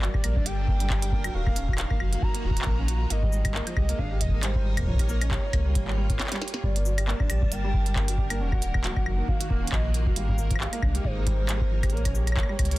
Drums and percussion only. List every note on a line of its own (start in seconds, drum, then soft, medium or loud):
0.02 clap loud
0.14 kick loud
0.14 claves soft
0.24 closed hi-hat medium
0.24 claves medium
0.36 kick loud
0.46 closed hi-hat medium
0.68 kick loud
0.80 closed hi-hat medium
0.90 kick loud
0.90 clap loud
1.02 closed hi-hat medium
1.12 kick loud
1.24 closed hi-hat soft
1.24 claves medium
1.46 kick loud
1.46 claves soft
1.56 closed hi-hat medium
1.56 shaker medium
1.68 kick loud
1.73 claves medium
1.78 clap loud
1.78 closed hi-hat medium
1.91 kick loud
1.91 claves soft
2.00 claves medium
2.13 closed hi-hat medium
2.22 kick loud
2.35 closed hi-hat medium
2.50 kick loud
2.57 closed hi-hat medium
2.61 clap loud
2.66 kick loud
2.88 closed hi-hat medium
3.10 closed hi-hat medium
3.23 kick loud
3.33 shaker medium
3.45 kick loud
3.45 closed hi-hat medium
3.45 claves medium
3.55 clap loud
3.67 closed hi-hat medium
3.67 claves soft
3.77 kick loud
3.77 claves medium
3.89 closed hi-hat medium
3.99 kick loud
4.21 kick soft
4.21 closed hi-hat medium
4.23 kick medium
4.26 kick medium
4.28 kick medium
4.31 kick medium
4.43 clap loud
4.43 closed hi-hat medium
4.55 kick loud
4.77 kick soft
4.77 closed hi-hat medium
4.77 claves medium
4.80 kick soft
4.82 kick medium
4.84 kick medium
4.87 kick medium
4.90 kick medium
4.93 kick medium
4.96 kick medium
4.99 kick loud
4.99 closed hi-hat medium
4.99 claves soft
5.09 shaker medium
5.21 closed hi-hat medium
5.21 claves medium
5.31 kick loud
5.31 clap loud
5.53 kick loud
5.53 closed hi-hat medium
5.53 claves medium
5.75 kick loud
5.75 closed hi-hat medium
5.88 clap medium
6.10 kick loud
6.10 closed hi-hat medium
6.19 snare medium
6.19 clap loud
6.27 clap medium
6.32 snare medium
6.32 clap medium
6.32 closed hi-hat medium
6.42 snare medium
6.48 closed hi-hat medium
6.54 snare medium
6.63 kick loud
6.76 closed hi-hat loud
6.86 shaker medium
6.98 closed hi-hat medium
6.98 claves medium
7.08 clap loud
7.20 kick loud
7.20 claves soft
7.30 closed hi-hat medium
7.30 claves medium
7.42 kick loud
7.52 closed hi-hat medium
7.74 kick loud
7.86 closed hi-hat medium
7.96 kick loud
7.96 clap loud
8.08 closed hi-hat loud
8.18 kick loud
8.30 closed hi-hat medium
8.30 claves medium
8.52 kick loud
8.52 claves soft
8.62 closed hi-hat medium
8.62 shaker medium
8.74 kick loud
8.74 claves medium
8.84 clap loud
8.84 closed hi-hat loud
8.96 kick loud
8.96 claves soft
9.06 claves medium
9.28 kick loud
9.41 closed hi-hat loud
9.50 kick loud
9.67 closed hi-hat medium
9.72 kick loud
9.72 clap loud
9.94 closed hi-hat medium
10.07 kick loud
10.16 closed hi-hat loud
10.29 kick loud
10.31 kick medium
10.33 kick medium
10.35 kick medium
10.36 kick soft
10.36 shaker medium
10.51 kick loud
10.51 closed hi-hat medium
10.56 claves medium
10.60 clap loud
10.73 closed hi-hat medium
10.73 claves soft
10.82 kick loud
10.82 claves medium
10.95 closed hi-hat medium
11.05 kick loud
11.27 kick loud
11.27 closed hi-hat medium
11.49 clap loud
11.49 closed hi-hat medium
11.61 kick loud
11.83 kick loud
11.83 closed hi-hat soft
11.83 claves medium
11.90 closed hi-hat soft
11.97 closed hi-hat soft
12.05 kick loud
12.05 closed hi-hat medium
12.05 claves soft
12.15 shaker medium
12.27 closed hi-hat medium
12.27 claves soft
12.32 claves soft
12.37 kick loud
12.37 clap loud
12.37 claves medium
12.43 claves medium
12.49 claves soft
12.59 kick loud
12.59 closed hi-hat medium
12.59 claves medium
12.65 closed hi-hat medium
12.71 closed hi-hat medium